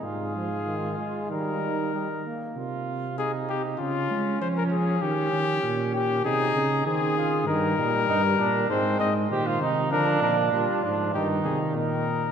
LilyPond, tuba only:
\new Staff \with { instrumentName = "Tuba" } { \clef bass \time 4/4 \key aes \major \tempo 4 = 98 aes,4. r8 ees4. r8 | c2 des8 aes8 f4 | ees8 ees8 bes,4 c8 des8 ees4 | g,8 bes,8 g,8 bes,8 aes,8 aes,8 bes,8 c8 |
d8 bes,8 bes,8 aes,8 g,8 c8 bes,4 | }